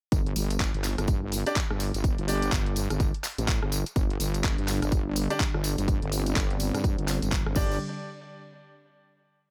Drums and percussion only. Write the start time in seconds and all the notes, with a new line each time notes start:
0.12 kick, closed hi-hat, tambourine
0.26 closed hi-hat
0.36 open hi-hat, tambourine
0.50 closed hi-hat, tambourine
0.60 kick, clap, closed hi-hat, tambourine
0.74 closed hi-hat
0.84 clap, open hi-hat, tambourine
0.98 cross-stick, closed hi-hat, tambourine
1.07 kick, closed hi-hat, tambourine
1.32 open hi-hat, tambourine
1.46 closed hi-hat, tambourine
1.56 kick, clap, closed hi-hat, tambourine
1.70 cross-stick
1.80 open hi-hat, tambourine
1.94 closed hi-hat, tambourine
2.04 kick, closed hi-hat, tambourine
2.18 closed hi-hat
2.28 open hi-hat, tambourine
2.42 closed hi-hat, tambourine
2.52 kick, clap, closed hi-hat, tambourine
2.66 closed hi-hat
2.76 open hi-hat, tambourine
2.90 cross-stick, closed hi-hat, tambourine
3.00 kick, closed hi-hat, tambourine
3.14 closed hi-hat
3.24 clap, open hi-hat, tambourine
3.38 closed hi-hat, tambourine
3.48 kick, clap, closed hi-hat, tambourine
3.62 cross-stick
3.72 open hi-hat, tambourine
3.86 closed hi-hat, tambourine
3.96 kick, closed hi-hat, tambourine
4.10 closed hi-hat
4.20 open hi-hat, tambourine
4.34 closed hi-hat, tambourine
4.44 kick, clap, closed hi-hat, tambourine
4.58 closed hi-hat
4.68 clap, open hi-hat, tambourine
4.82 cross-stick, closed hi-hat, tambourine
4.92 kick, closed hi-hat, tambourine
5.16 open hi-hat, tambourine
5.30 closed hi-hat, tambourine
5.40 kick, clap, closed hi-hat, tambourine
5.54 cross-stick
5.64 open hi-hat, tambourine
5.78 closed hi-hat, tambourine
5.88 kick, closed hi-hat, tambourine
6.02 closed hi-hat
6.12 open hi-hat, tambourine
6.26 closed hi-hat, tambourine
6.36 kick, clap, closed hi-hat, tambourine
6.50 closed hi-hat
6.60 open hi-hat, tambourine
6.75 cross-stick, closed hi-hat, tambourine
6.84 kick, closed hi-hat, tambourine
6.98 closed hi-hat
7.08 clap, open hi-hat, tambourine
7.22 closed hi-hat, tambourine
7.32 kick, clap, closed hi-hat, tambourine
7.46 cross-stick
7.55 kick, crash, tambourine
7.71 tambourine